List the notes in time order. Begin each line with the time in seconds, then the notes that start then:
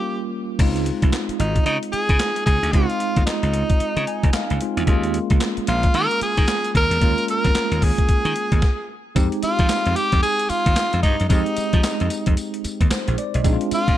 Already playing: G3 A#3 C#4 F4 G4
0.59 C#2 G#3 C4 D#4 F4, kick, closed hi-hat, crash
0.76 closed hi-hat
0.86 closed hi-hat
1.02 C2, kick, closed hi-hat
1.13 snare, clap, closed hi-hat
1.29 muted slap bass stroke, closed hi-hat
1.39 G#1 D#4, closed hi-hat
1.56 kick, closed hi-hat
1.66 C#3 D#4, closed hi-hat
1.83 closed hi-hat
1.92 G#4, muted slap bass stroke, closed hi-hat
2.09 C#3, kick, closed hi-hat
2.20 snare, clap, closed hi-hat
2.36 closed hi-hat
2.46 C#2 G#4, kick, closed hi-hat
2.63 D2, closed hi-hat
2.72 C#2 G#3 C4 D#4 F4, kick, closed hi-hat
2.90 closed hi-hat
3.00 closed hi-hat
3.16 D#2, kick, closed hi-hat
3.26 D#4, muted slap bass stroke, snare, clap, closed hi-hat
3.43 C#2, closed hi-hat
3.54 closed hi-hat
3.70 kick, closed hi-hat
3.80 muted slap bass stroke, closed hi-hat
3.97 C#3, closed hi-hat
4.07 G#5, closed hi-hat
4.23 C#2, kick, closed hi-hat
4.33 F5, muted slap bass stroke, snare, clap, closed hi-hat
4.50 C#2, closed hi-hat
4.61 G#3 C4 D#4 F4, closed hi-hat
4.77 E2, closed hi-hat
4.87 D#2 G#3 A#3 C#4 F4, kick, closed hi-hat
5.03 closed hi-hat
5.14 closed hi-hat
5.30 C#2, kick, closed hi-hat
5.41 snare, clap, closed hi-hat
5.57 muted slap bass stroke, closed hi-hat
5.67 A#1 F4, closed hi-hat
5.83 kick, closed hi-hat
5.94 D#3 A#4, closed hi-hat
6.11 closed hi-hat
6.21 G#4, muted slap bass stroke, closed hi-hat
6.37 D#3, kick, closed hi-hat
6.48 snare, clap, closed hi-hat
6.64 closed hi-hat
6.75 D#2 A#4, kick, closed hi-hat
6.91 E2, closed hi-hat
7.01 D#2 G#3 A#3 C#4 F4, kick, closed hi-hat
7.18 closed hi-hat
7.28 A#4, closed hi-hat
7.45 F2, kick, snare, closed hi-hat
7.55 muted slap bass stroke, snare, clap, closed hi-hat
7.71 D#2, closed hi-hat
7.82 G#4, kick, open hi-hat
7.98 kick, closed hi-hat
8.09 muted slap bass stroke, kick, closed hi-hat
8.25 D#3, closed hi-hat
8.36 closed hi-hat
8.52 D#2, kick, closed hi-hat
8.62 kick, snare
9.15 F2 G#3 C4 D#4 G4, kick, closed hi-hat, tambourine
9.32 closed hi-hat
9.42 F4, muted slap bass stroke, closed hi-hat, tambourine
9.59 F3, kick, closed hi-hat
9.69 snare, clap, closed hi-hat, tambourine
9.86 F2, closed hi-hat
9.96 G4, closed hi-hat, tambourine
10.12 F2, kick, closed hi-hat
10.22 G#4, closed hi-hat, tambourine
10.39 closed hi-hat
10.49 F4, muted slap bass stroke, closed hi-hat, tambourine
10.66 D#2, kick, closed hi-hat
10.76 snare, clap, closed hi-hat, tambourine
10.93 F2, closed hi-hat
11.03 G2 D#4, kick, closed hi-hat
11.20 F#2, closed hi-hat
11.29 F2 G#3 C4 D#4 G4, kick, closed hi-hat, tambourine
11.46 closed hi-hat
11.56 muted slap bass stroke, closed hi-hat, tambourine
11.73 F3, kick, closed hi-hat
11.84 snare, clap, closed hi-hat, tambourine
12.00 F2, closed hi-hat
12.10 closed hi-hat, tambourine
12.26 F2, kick, closed hi-hat
12.37 closed hi-hat, tambourine
12.54 closed hi-hat
12.64 muted slap bass stroke, closed hi-hat, tambourine
12.81 D#2, kick, closed hi-hat
12.91 C5, muted slap bass stroke, snare, clap, closed hi-hat, tambourine
13.08 A#1, closed hi-hat
13.18 D5, closed hi-hat
13.34 B1 D#5, closed hi-hat
13.44 A#1 G#3 C4 D4 D#4, kick, closed hi-hat, tambourine
13.53 F4
13.61 closed hi-hat
13.71 F4, muted slap bass stroke, closed hi-hat, tambourine
13.88 A#2, kick, closed hi-hat